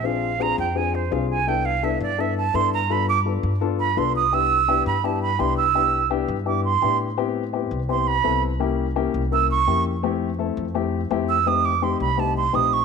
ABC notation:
X:1
M:4/4
L:1/8
Q:1/4=168
K:C
V:1 name="Flute"
f2 _b g _a c f a | g f e d e a c' _b | b d' z3 b c' _e' | e'3 b a b c' e'- |
e'2 z2 d' c'2 z | [K:Am] z4 c' b2 z | z4 e' _d'2 z | z6 z e' |
_e' d' c' b a c' e' ^c' |]
V:2 name="Grand piano"
[CDF_A] z [CDFA] z [CDFA] z [CDFA] z | [B,DEA] z [B,DEA] z [B,DEA] z [B,DEA] z | [B,DFA] z [B,DFA] z [B,DFA] z [B,DFA] z | [B,DEG] z [B,DEG] z [B,DEG] z [B,DEG] z |
[B,DEG] z [B,DEG] z [B,DEG] z [B,DEG] z | [K:Am] [B,CEG] z [B,CEG] z [B,CEG] z [B,CEA] z | [_B,_DEG] z [B,DEG] z [B,DE_B] z [B,DEG] z | [A,CEG] z [A,CEA] z [A,CEG] z [A,CEG] z |
[A,C_EG] z [A,CEG] z [A,CEG] z [A,CEG] z |]
V:3 name="Upright bass" clef=bass
_B,,,3 F,,3 C,,2- | C,,3 G,,3 G,,2- | G,,3 G,,3 C,,2- | C,,3 G,,3 C,,2- |
C,,3 G,,3 A,,2- | [K:Am] A,,3 C,,3 C,,2- | C,,3 C,,3 F,,2- | F,,3 F,,3 F,,2- |
F,,3 C,,3 _B,,,2 |]